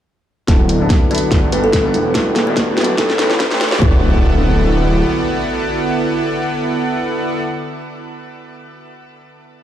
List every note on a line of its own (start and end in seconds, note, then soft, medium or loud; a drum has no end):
0.47 0.89 D1 loud
0.47 1.31 D3 medium
0.47 0.58 F#3 medium
0.47 0.58 B3 medium
0.47 0.78 B3 medium
0.47 1.31 B3 medium
0.47 0.58 D4 medium
0.47 0.78 E4 medium
0.47 1.31 E4 medium
0.47 0.59 E4 medium
0.47 2.96 F#4 medium
0.47 0.78 A4 medium
0.47 0.59 A4 medium
0.47 0.78 D5 medium
0.47 0.78 F#5 medium
0.47 kick medium
0.47 snare soft
0.47 closed hi-hat medium
0.47 riser medium
0.69 closed hi-hat medium
0.80 1.08 F#3 medium
0.80 1.08 B3 medium
0.80 1.09 D4 medium
0.80 1.08 E4 medium
0.80 1.09 E4 medium
0.80 1.08 A4 medium
0.80 1.09 A4 medium
0.80 1.08 D5 medium
0.80 1.08 E5 medium
0.90 kick medium
0.90 snare soft
0.90 closed hi-hat medium
1.10 1.29 F#3 medium
1.10 1.29 B3 medium
1.10 1.27 B3 medium
1.10 1.29 D4 medium
1.10 1.27 E4 medium
1.10 1.30 E4 medium
1.10 1.27 A4 medium
1.10 1.30 A4 medium
1.10 1.27 D5 medium
1.10 1.29 D5 medium
1.10 1.27 B5 medium
1.10 closed hi-hat soft
1.15 closed hi-hat medium
1.18 closed hi-hat medium
1.31 1.51 G1 loud
1.31 1.47 G3 medium
1.31 1.47 B3 medium
1.31 1.47 D4 medium
1.31 1.47 F#4 medium
1.31 1.48 A4 medium
1.31 kick loud
1.31 snare medium
1.31 closed hi-hat medium
1.43 1.52 B3 medium
1.43 1.52 G4 medium
1.43 1.52 A4 medium
1.43 1.52 D5 medium
1.43 1.52 F#5 medium
1.51 1.96 G1 medium
1.51 1.81 G3 medium
1.51 1.82 B3 medium
1.51 1.82 D4 medium
1.51 1.82 F#4 medium
1.51 1.82 A4 loud
1.51 1.62 B4 medium
1.51 closed hi-hat medium
1.64 1.70 A4 medium
1.73 kick loud
1.73 snare medium
1.73 closed hi-hat medium
1.84 1.93 G3 medium
1.84 1.93 B3 medium
1.84 2.13 B3 medium
1.84 1.93 D4 medium
1.84 2.13 E4 medium
1.84 1.93 F#4 medium
1.84 2.13 G4 medium
1.84 1.94 A4 loud
1.84 2.13 D5 medium
1.84 2.13 F#5 medium
1.94 2.46 E1 medium
1.94 2.97 E3 medium
1.94 2.97 D4 medium
1.94 3.80 G4 medium
1.94 closed hi-hat medium
2.14 2.25 G3 medium
2.14 2.25 B3 medium
2.14 2.44 B3 medium
2.14 2.25 D4 medium
2.14 2.44 E4 medium
2.14 2.25 E4 medium
2.14 2.26 F#4 medium
2.14 2.44 G4 medium
2.14 2.33 B4 medium
2.14 2.44 D5 medium
2.14 2.44 F#5 medium
2.14 kick loud
2.14 snare medium
2.14 closed hi-hat medium
2.36 snare medium
2.36 closed hi-hat medium
2.46 2.97 D1 loud
2.46 2.75 G3 medium
2.46 2.75 B3 medium
2.46 2.75 D4 medium
2.46 2.75 E4 medium
2.46 2.76 E4 medium
2.46 2.76 F#4 medium
2.46 2.75 G4 medium
2.46 2.64 D5 medium
2.46 2.75 D5 medium
2.46 2.75 E5 medium
2.57 kick loud
2.57 snare medium
2.57 closed hi-hat medium
2.77 2.96 G3 medium
2.77 2.96 B3 medium
2.77 2.93 B3 medium
2.77 2.96 D4 medium
2.77 2.93 E4 medium
2.77 2.96 E4 medium
2.77 2.97 F#4 medium
2.77 2.93 G4 medium
2.77 2.95 B4 loud
2.77 2.93 D5 medium
2.77 2.93 A5 medium
2.77 snare medium
2.77 closed hi-hat soft
2.81 closed hi-hat medium
2.84 closed hi-hat medium
2.97 3.80 A1 loud
2.97 3.13 A3 medium
2.97 3.81 A3 medium
2.97 3.14 B3 medium
2.97 3.81 C#4 medium
2.97 3.14 C#4 medium
2.97 3.14 E4 medium
2.97 3.14 G4 medium
2.97 3.16 A4 medium
2.97 kick loud
2.97 snare medium
2.97 closed hi-hat medium
3.10 3.18 A3 medium
3.10 3.18 E4 medium
3.10 3.18 G4 medium
3.10 3.18 C#5 medium
3.10 3.18 E5 medium
3.10 snare medium
3.18 3.48 A3 medium
3.18 3.48 B3 medium
3.18 3.49 C#4 medium
3.18 3.49 E4 medium
3.18 3.49 G4 loud
3.18 snare loud
3.18 closed hi-hat medium
3.30 3.72 B4 medium
3.30 snare medium
3.40 kick loud
3.40 snare loud
3.40 closed hi-hat medium
3.50 3.59 A3 loud
3.50 3.79 A3 medium
3.50 3.60 B3 medium
3.50 3.60 C#4 medium
3.50 3.79 E4 medium
3.50 3.60 E4 medium
3.50 3.79 G4 medium
3.50 3.60 G4 loud
3.50 3.79 C#5 medium
3.50 3.79 E5 medium
3.50 snare medium
3.61 snare loud
3.61 closed hi-hat medium
3.72 snare loud
3.79 5.03 D1 loud
3.79 7.41 D3 medium
3.79 7.38 A3 medium
3.79 7.39 B3 medium
3.79 7.41 B3 medium
3.79 7.41 D4 medium
3.79 7.41 E4 medium
3.79 7.41 F#4 medium
3.79 7.41 A4 medium
3.79 7.41 D5 medium
3.79 7.41 F#5 loud
3.79 kick loud
3.79 impact medium
3.83 7.42 E4 medium
3.83 7.44 F#4 medium